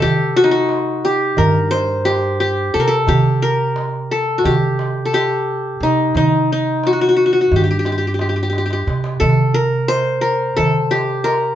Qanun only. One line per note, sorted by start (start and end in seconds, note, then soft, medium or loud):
0.00 0.42 G4 medium
0.00 1.11 A4 medium
0.36 0.51 F#4 medium
0.44 1.87 D#4 medium
0.51 1.11 F#4 medium
1.05 2.05 G4 medium
1.38 2.51 A#4 medium
1.71 2.76 C5 loud
2.05 2.40 G4 medium
2.40 3.08 G4 medium
2.74 2.86 A4 medium
2.80 2.94 A#4 medium
2.88 3.48 A4 medium
3.08 4.34 G4 medium
3.42 4.17 A#4 medium
4.11 5.05 A4 medium
4.38 4.51 F#4 medium
4.45 5.14 G4 medium
5.05 6.22 A4 medium
5.14 6.39 G4 medium
5.83 6.16 D#4 medium
6.17 6.52 D#4 medium
6.52 7.96 D#4 medium
6.87 6.92 F#4 medium
6.93 7.01 F#4 medium
7.01 7.08 F#4 medium
7.09 7.16 F#4 medium
7.17 7.25 F#4 medium
7.26 7.32 F#4 medium
7.33 7.41 F#4 medium
7.41 7.62 F#4 medium
7.56 7.63 G4 medium
7.64 7.70 G4 soft
7.71 7.79 G4 medium
7.79 7.85 G4 medium
7.86 7.92 G4 medium
7.92 7.97 G4 soft
7.98 8.07 G4 soft
8.07 8.14 G4 soft
8.14 8.21 G4 soft
8.21 8.29 G4 soft
8.29 8.36 G4 soft
8.36 8.42 G4 soft
8.43 8.49 G4 medium
8.50 8.58 G4 soft
8.58 8.65 G4 medium
8.66 8.72 G4 soft
8.73 9.98 G4 medium
9.20 9.60 A4 medium
9.54 10.21 A#4 medium
9.88 10.94 C5 loud
10.21 10.62 A#4 medium
10.56 11.30 A4 medium
10.91 11.55 G4 medium
11.24 11.55 A#4 medium